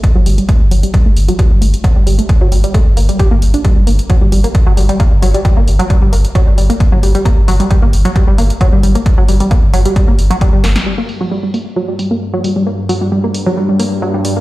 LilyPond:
<<
  \new Staff \with { instrumentName = "Synth arpeggio sound" } { \clef bass \time 4/4 \key g \minor \tempo 4 = 133 r16 fis16 g16 g16 a16 r16 fis16 g16 g16 a16 r16 fis16 g16 g16 a16 r16 | fis16 g16 g16 a16 r16 fis16 g16 g16 a16 r16 bes16 g16 g'16 bes16 r16 d'16 | g16 g16 bes16 r16 fis16 g16 g16 bes16 r16 fis16 g16 g16 bes16 r16 fis16 g16 | g16 bes16 r16 fis16 g16 g16 bes16 r16 fis16 g16 g16 bes16 r16 fis16 g16 g16 |
bes16 r16 fis16 g16 g16 bes16 r16 fis16 g16 g16 bes16 r16 fis16 g16 g16 bes16 | r16 fis16 g16 g16 bes16 r16 fis16 g16 g16 bes16 r16 fis16 g16 g16 bes16 r16 | g16 bes16 r16 fis16 g16 g16 bes16 r16 fis16 g16 g16 bes16 r16 fis16 g16 g16 | bes16 r16 fis16 g16 g16 bes16 r16 fis16 g16 g16 bes16 r16 fis16 g16 g16 bes16 | }
  \new Staff \with { instrumentName = "Ambient pad" } { \clef bass \time 4/4 \key g \minor r1 | r1 | r1 | r1 |
r1 | r1 | g,1~ | g,1 | }
  \new Staff \with { instrumentName = "Sub bass" } { \clef bass \time 4/4 \key g \minor r16 g,,16 g,,16 r8 g,,16 g,,16 r8 g,,16 g,,16 r8 g,,16 g,,16 r16 | r16 g,,16 g,,16 r8 g,,16 g,,16 r8 g,,16 g,,16 r8 g,,16 g,,16 r16 | r16 g,,16 g,,16 r8 g,,16 g,,16 r8 g,,16 g,,16 r8 g,,16 g,,16 r16 | r16 g,,16 g,,16 r8 g,,16 g,,16 r8 g,,16 g,,16 r8 g,,16 g,,16 r16 |
r16 g,,16 g,,16 r8 g,,16 g,,16 r8 g,,16 g,,16 r8 g,,16 g,,16 r16 | r16 g,,16 g,,16 r8 g,,16 g,,16 r8 g,,16 g,,16 r8 g,,16 g,,16 r16 | r1 | r1 | }
  \new DrumStaff \with { instrumentName = "Drums" } \drummode { \time 4/4 <hh bd>8 hho16 hh16 <hh bd>8 hho16 hh16 <hh bd>8 hho16 hh16 <hh bd>8 hho16 hh16 | <hh bd>8 hho16 hh16 <hh bd>8 hho16 hh16 <hh bd>8 hho16 hh16 <hh bd>8 hho16 hh16 | <hh bd>8 hho16 hh16 <hh bd>8 hho16 hh16 <hh bd>8 hho16 hh16 <hh bd>8 hho16 hh16 | <hh bd>8 hho16 hh16 <hh bd>8 hho16 hh16 <hh bd>8 hho16 hh16 <hh bd>8 hho16 hh16 |
<hh bd>8 hho16 hh16 <hh bd>8 hho16 hh16 <hh bd>8 hho16 hh16 <hh bd>8 hho16 hh16 | <hh bd>8 hho16 hh16 <hh bd>8 hho16 hh16 <hh bd>8 hho16 hh16 <hh bd>8 <hho sn>16 <hh sn>16 | cymc8 hho8 r8 hho8 r8 hho8 r8 hho8 | r8 hho8 r8 hho8 r8 hho8 r8 hho8 | }
>>